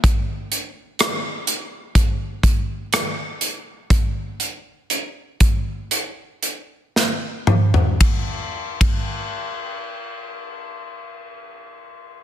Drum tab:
RD |----------------|----------------|x--x------------|
HH |x-x-x-x-x-x-x-x-|x-x-x-x-x-x-----|----------------|
SD |----r-------r---|------------o---|----------------|
T2 |----------------|--------------o-|----------------|
FT |----------------|---------------o|----------------|
BD |o-------o-o-----|o-----o---------|o--o------------|